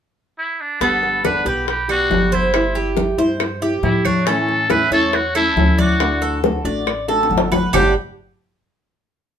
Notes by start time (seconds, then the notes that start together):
0.38 E4
0.61 D4
0.80 G1 D3 G3 B3 G4 A4, high bongo, high conga
1.03 high bongo, high conga
1.24 D3 G3 B3 D4 G4 B4, high bongo, high conga, claves
1.45 B1 G3 B3 G4 B4, high bongo, high conga
1.67 G4, muted nylon-string guitar stroke, high bongo, high conga
1.88 G3 B3 F#4 G4, high conga, claves
2.10 G1 D3 G3 B3 G4, high bongo, low bongo, high conga
2.32 E4 C5, high bongo, high conga
2.54 G3 C4 E4, high bongo, claves
2.75 G4, high bongo, high conga
2.96 G3 C4 E4, high bongo, high conga
3.18 G2 C4 E4 C5, high bongo, high conga
3.40 muted nylon-string guitar stroke, high bongo, high conga, claves
3.62 C4 E4 G4, high conga
3.83 A2 G3 C4 E4, high bongo, low bongo, high conga
4.05 D4 C#5, high bongo, high conga, claves
4.27 E3 A3 C#4 E4 A4, high bongo, high conga
4.48 high bongo, high conga
4.69 E3 A3 C#4 E4 B4, high bongo, high conga, claves
4.91 E2 A3 C#4 E4 A4 C#5, high bongo, high conga
5.13 F#4, muted nylon-string guitar stroke, high bongo, high conga
5.35 A3 C#4 E4 A4, high conga, claves
5.56 D2 E3 A3 C#4 E4, high bongo, low bongo, high conga
5.78 F#4 D5, high bongo, high conga
6.00 D3 A3 D4 F#4, high bongo, claves
6.22 A4, high bongo, high conga
6.43 D3 A3 D4 F#4, high bongo, high conga
6.65 A1 A3 D4 F#4 D5, high bongo, high conga
6.87 muted nylon-string guitar stroke, high bongo, high conga, claves
7.08 A3 D4 F#4 A4, high bongo, high conga
7.23 high bongo
7.30 G1 D3 A3 D4 F#4, high conga
7.38 low bongo
7.52 B4, low bongo, high conga, claves
7.73 G1 G2 A2 D3 G3 B3 D4 G4, low bongo, low conga, claves